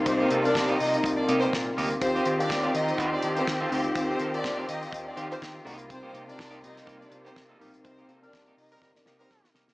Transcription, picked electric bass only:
X:1
M:4/4
L:1/16
Q:"Swing 16ths" 1/4=123
K:Cm
V:1 name="Picked electric bass" clef=bass
C,,2 C,2 C,,2 C,2 C,,2 C,2 B,,2 D,,2 | E,,2 E,2 E,,2 E,2 E,,2 E,2 E,2 D,,2 | E,,2 E,2 E,,2 E,2 E,,2 E,2 E,2 C,,2- | C,,2 C,2 C,,2 C,2 C,,2 C,2 C,2 =B,,,2 |
C,,2 C,2 C,,2 C,2 G,,,2 C,2 C,, C, C,, C, |]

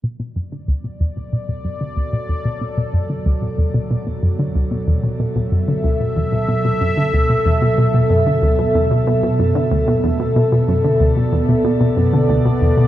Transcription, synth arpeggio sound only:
X:1
M:4/4
L:1/16
Q:1/4=93
K:Bm
V:1 name="Synth arpeggio sound" clef=bass
B,, B,, F,, D, D,, B,, E,, B,, B,, B,, F,, D, D,, B,, E,, B,, | B,, B,, F,, D, D,, B,, E,, B,, B,, B,, F,, D, D,, B,, E,, B,, | B,, B,, F,, D, D,, B,, E,, B,, B,, B,, F,, D, D,, B,, E,, B,, | B,, B,, F,, D, D,, B,, E,, B,, B,, B,, F,, D, D,, B,, E,, B,, |
B,, B,, F,, D, D,, B,, E,, B,, B,, B,, F,, D, D,, B,, E,, B,, |]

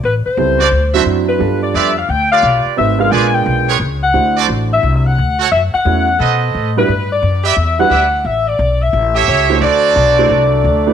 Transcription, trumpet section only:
X:1
M:4/4
L:1/8
Q:"Swing" 1/4=175
K:Dmix
V:1 name="Trumpet section"
z3 [FAcd] z [FAce] z2 | z2 [=FGBd] z2 [FGBd]3 | z2 [^E^GBd] z2 [EGB^c] z2 | z [FAcd] z4 z [FA^cf] |
z4 [ABc^d]3 z | z3 [GBde] z2 [GBde] z | z4 z [GA^ce]3 | [FAcd]4- [FAcd] z3 |]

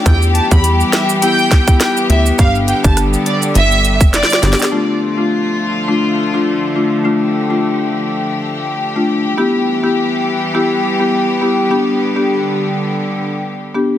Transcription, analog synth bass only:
X:1
M:4/4
L:1/16
Q:"Swing 16ths" 1/4=103
K:Ddor
V:1 name="Analog synth bass" clef=bass
E,,3 E,,3 z8 D,,2 | G,,,3 G,,,3 z2 G,,,3 F,,,2 z G,,, z | z16 | z16 |
z16 | z16 |]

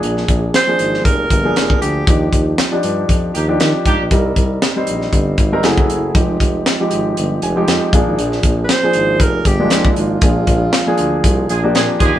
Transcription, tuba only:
X:1
M:4/4
L:1/16
Q:"Swing 16ths" 1/4=118
K:Bbmix
V:1 name="Tuba" clef=bass
B,,,2 B,,,2 z2 A,,,2 F,,,2 G,,,2 F,,,2 D,,2 | E,,2 E,,2 z2 G,,2 F,,2 E,,2 E, z A,, B,,, | C,,2 C,,2 z2 B,,,2 G,,,2 A,,,2 ^F,,,2 F,,,2 | F,,,2 F,,,2 z2 A,,,2 G,,,2 F,,,2 F,, z B,,, A,,, |
B,,,2 B,,,2 z2 A,,,2 F,,,2 G,,,2 F,,,2 A,,,2 | B,,,2 B,,,2 z2 D,,2 C,,2 B,,,2 B,, z E,, G,,, |]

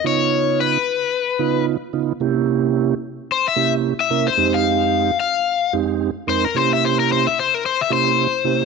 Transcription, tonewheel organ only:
X:1
M:4/4
L:1/8
Q:"Swing 16ths" 1/4=111
K:Cphr
V:1 name="Tonewheel organ"
[D,_CEF]3 z2 [D,CEF] z [D,CEF] | [C,B,D=EG]3 z2 [C,B,DEG] z [C,B,DEB] | [F,,A,CEG]3 z2 [F,,A,CEG] z [F,,A,CEB] | [C,B,D=EG]3 z2 [C,B,DEG] z [C,B,DEG] |]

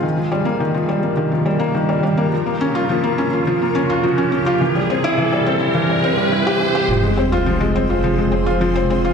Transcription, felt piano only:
X:1
M:4/4
L:1/16
Q:1/4=105
K:Fm
V:1 name="Felt piano"
E, F, G, B, E, F, G, B, E, F, G, B, E, G, G, B, | F, B, D F F, B, D F F, B, D F F, D D F | =E, G, C =E E, G, C E E, G, C G, E G G G | F, A, C F F, A, C F F, A, C F F, C C F |]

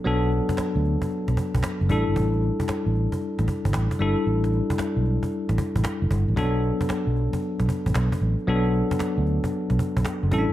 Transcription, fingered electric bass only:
X:1
M:4/4
L:1/16
Q:"Swing 16ths" 1/4=114
K:Bm
V:1 name="Fingered electric bass" clef=bass
B,,,3 z2 D,,2 z2 B,,, z B,,, z F,,, A,,, G,,, | A,,,3 z2 A,,,2 z2 A,,, z G,,, A,,, z G,,, z | A,,,3 z2 B,,,2 z2 A,,, z A,,, z F,,, G,,, A,,, | B,,,3 z2 B,,,2 z2 B,,, z A,,, B,,, z A,,, z |
B,,,3 z2 D,,2 z2 B,,, z B,,, z F,,, A,,, G,,, |]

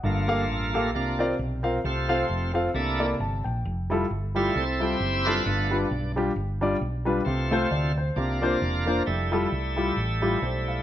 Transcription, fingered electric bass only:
X:1
M:4/4
L:1/8
Q:"Swing" 1/4=133
K:F
V:1 name="Fingered electric bass" clef=bass
G,,,2 A,,,2 C,,2 =B,,,2 | C,,2 F,,,2 C,,2 G,,, B,,, | F,,,2 G,,,2 C,,2 _G,,,2 | G,,,2 =B,,,2 G,,,2 B,,,2 |
C,,2 D,,2 C,,2 E,,,2 | F,,,2 C,,2 A,,,2 =B,,,2 |]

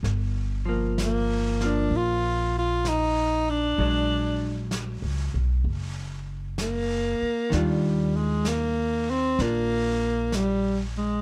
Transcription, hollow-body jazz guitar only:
X:1
M:4/4
L:1/8
Q:"Swing" 1/4=64
K:Gphr
V:1 name="Hollow-body jazz guitar"
z [F,B,]2 [F,B,]4- [F,B,] | [^F,A,D]8 | [E,DF]4 [DF]4 |]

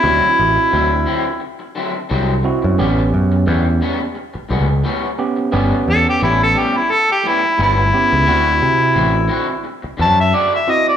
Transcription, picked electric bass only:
X:1
M:4/4
L:1/16
Q:"Swing 16ths" 1/4=87
K:D
V:1 name="Picked electric bass" clef=bass
D,, z A,,, z D,,2 z6 =C,,2 z F,, | A,,,2 F,,2 E,,2 z4 C,,2 z4 | G,,, z E,, z A,,,2 z6 G,,,2 z C,, | D,,2 =C,2 A,,,2 z4 F,,2 z4 |]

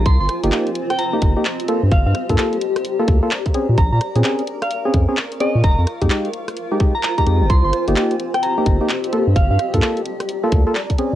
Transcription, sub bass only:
X:1
M:4/4
L:1/16
Q:"Swing 16ths" 1/4=129
K:Gphr
V:1 name="Sub bass" clef=bass
C,, G,,, z G,,, z6 G,,, z4 G,, | G,,, G,, z G,, z6 D,, z4 B,, | B,,, B,, z B,, z6 F,, z4 B,, | F,,, F,, z F,, z8 z2 F,, F,,, |
C,, G,,, z G,,, z6 G,,, z4 G,, | G,,, G,, z G,, z6 D,, z4 z |]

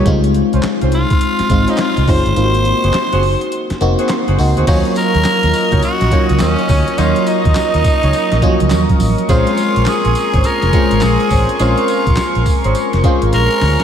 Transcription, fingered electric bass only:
X:1
M:4/4
L:1/16
Q:"Swing 16ths" 1/4=104
K:Ebdor
V:1 name="Fingered electric bass" clef=bass
D,,3 C,, z C,,2 z3 A,,, z2 C,, G,,, =G,,, | A,,,3 G,,, z G,,,2 z3 F,,, z2 G,,, D,, =D,, | E,, z2 E,, z E,, z D,, z B,,, z D,, E,, z =D,, z | E,, z2 E,, z E,, z D,, z B,,, z D,, E,, z =A,,, z |
B,,, z2 B,,, z B,,, z A,,, z F,,, z A,,, B,,, z =A,,, z | B,,, z2 B,,, z B,,, z A,,, z F,,, z A,,, B,,, z =D,, z |]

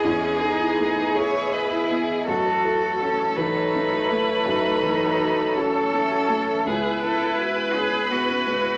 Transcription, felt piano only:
X:1
M:6/8
L:1/8
Q:3/8=55
K:F#dor
V:1 name="Felt piano"
[E,,B,] G A, G d B, | F,, E F E, C A, | F,, E, F E C A, | C,, E F E B, G, |]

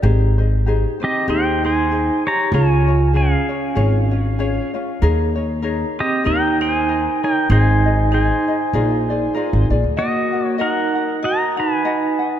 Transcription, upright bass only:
X:1
M:4/4
L:1/16
Q:"Swing" 1/4=97
K:Ab
V:1 name="Upright bass" clef=bass
A,,,8 E,,8 | D,,8 A,,,8 | E,,8 E,,8 | A,,,8 B,,,4- B,,, A,,, B,,, =D,, |
[K:Ebm] z16 |]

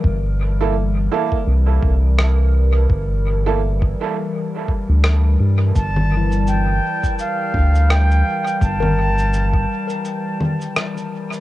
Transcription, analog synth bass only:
X:1
M:4/4
L:1/16
Q:"Swing 16ths" 1/4=84
K:Gdor
V:1 name="Analog synth bass" clef=bass
G,,,6 z2 C,,2 C,,6 | G,,,6 z4 z D,,3 G,,2 | G,,,6 z4 D,,4 z2 | G,,,6 z8 z2 |]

